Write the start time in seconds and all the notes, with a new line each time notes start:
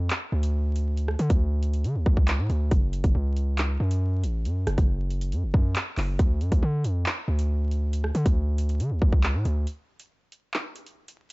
0.10 clap, closed hi-hat
0.32 D2
0.43 closed hi-hat
0.76 closed hi-hat
0.97 closed hi-hat
1.08 cross-stick
1.19 D3, closed hi-hat
1.30 D2, kick, closed hi-hat
1.63 closed hi-hat
1.74 closed hi-hat
1.84 D3, closed hi-hat
1.95 D2
2.06 D2, kick
2.17 C#2, kick
2.28 clap, closed hi-hat
2.39 A2
2.50 D2, closed hi-hat
2.71 F#1, kick, closed hi-hat
2.93 closed hi-hat
3.04 F#1, kick, closed hi-hat
3.15 C#2
3.37 closed hi-hat
3.58 clap, closed hi-hat
3.80 F#2
3.91 closed hi-hat
4.23 A1, closed hi-hat
4.45 F#2, closed hi-hat
4.67 F#1, cross-stick, closed hi-hat
4.78 F#1, kick, closed hi-hat
5.10 closed hi-hat
5.21 closed hi-hat
5.32 F#2, closed hi-hat
5.43 F#1
5.54 F#2, kick
5.76 clap, closed hi-hat
5.97 F#1, clap, open hi-hat
6.19 D2, kick, closed hi-hat
6.41 F#2, closed hi-hat
6.52 D2, kick, closed hi-hat
6.63 D3
6.84 F2, closed hi-hat
7.06 clap, closed hi-hat
7.28 D2
7.39 closed hi-hat
7.71 closed hi-hat
7.93 closed hi-hat
8.04 cross-stick
8.15 D3, closed hi-hat
8.26 D2, kick, closed hi-hat
8.58 closed hi-hat
8.69 closed hi-hat
8.80 D3, closed hi-hat
8.91 D2
9.02 D2, kick
9.13 C#2, kick
9.23 clap, closed hi-hat
9.34 A2
9.45 D2, closed hi-hat
9.67 closed hi-hat
10.00 closed hi-hat
10.32 closed hi-hat
10.54 clap
10.76 closed hi-hat
10.87 closed hi-hat
11.08 closed hi-hat